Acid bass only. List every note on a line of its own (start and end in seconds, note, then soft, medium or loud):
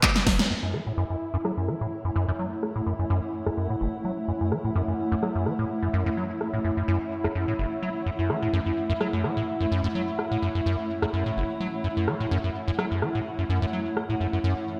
0.03 0.10 F#3 medium
0.27 0.34 F#3 loud
0.39 0.45 F#3 loud
0.50 0.54 F#2 medium
0.63 0.75 F#2 medium
0.74 0.81 F#3 medium
0.87 0.93 A2 medium
0.97 1.04 F#2 loud
1.10 1.16 F#2 medium
1.34 1.37 F#2 loud
1.45 1.52 F#3 medium
1.57 1.70 F#2 medium
1.68 1.75 F#3 medium
1.81 1.87 A2 medium
2.05 2.11 F#2 medium
2.16 2.26 F#2 medium
2.28 2.32 F#2 loud
2.39 2.46 F#3 medium
2.76 2.82 A2 medium
2.86 2.93 F#2 medium
2.99 3.05 F#2 medium
3.10 3.21 F#2 loud
3.46 3.50 F#2 medium
3.57 3.68 F#2 medium
3.70 3.76 A2 medium
3.81 3.88 F#1 medium
4.05 4.12 F#3 medium
4.28 4.32 F#2 medium
4.41 4.53 F#2 medium
4.52 4.59 F#3 medium
4.65 4.71 A2 medium
4.75 4.82 F#2 loud
4.88 4.94 F#2 medium
5.12 5.15 F#2 loud
5.23 5.30 F#3 medium
5.35 5.48 F#2 medium
5.46 5.53 F#3 medium
5.59 5.65 A2 medium
5.83 5.89 F#2 medium
5.94 6.04 F#2 medium
6.06 6.10 F#2 loud
6.17 6.24 F#3 medium
6.53 6.60 A2 medium
6.64 6.71 F#2 medium
6.77 6.83 F#2 medium
6.88 6.99 F#2 loud
7.24 7.28 F#2 medium
7.35 7.46 F#2 medium
7.48 7.54 A2 medium
7.59 7.66 F#1 medium
7.83 7.90 F#3 medium
8.06 8.10 F#2 medium
8.19 8.31 F#2 medium
8.30 8.37 F#3 medium
8.42 8.48 A2 medium
8.53 8.60 F#2 loud
8.66 8.72 F#2 medium
8.90 8.93 F#2 loud
9.01 9.08 F#3 medium
9.13 9.26 F#2 medium
9.24 9.31 F#3 medium
9.37 9.43 A2 medium
9.61 9.67 F#2 medium
9.71 9.82 F#2 loud
9.84 9.88 F#2 loud
9.95 10.02 F#3 medium
10.31 10.37 A2 medium
10.42 10.49 F#2 medium
10.55 10.61 F#2 medium
10.66 10.76 F#2 loud
11.02 11.06 F#2 medium
11.13 11.24 F#2 medium
11.26 11.32 A2 medium
11.37 11.44 F#1 medium
11.60 11.67 F#3 medium
11.84 11.88 F#2 medium
11.97 12.09 F#2 medium
12.08 12.15 F#3 medium
12.20 12.26 A2 medium
12.31 12.38 F#2 loud
12.44 12.50 F#2 medium
12.68 12.71 F#2 loud
12.79 12.86 F#3 medium
12.91 13.04 F#2 medium
13.02 13.09 F#3 medium
13.15 13.21 A2 medium
13.39 13.45 F#2 medium
13.49 13.60 F#2 loud
13.62 13.66 F#2 loud
13.73 13.80 F#3 medium
14.09 14.15 A2 medium
14.20 14.27 F#2 medium
14.33 14.39 F#2 medium
14.44 14.54 F#2 loud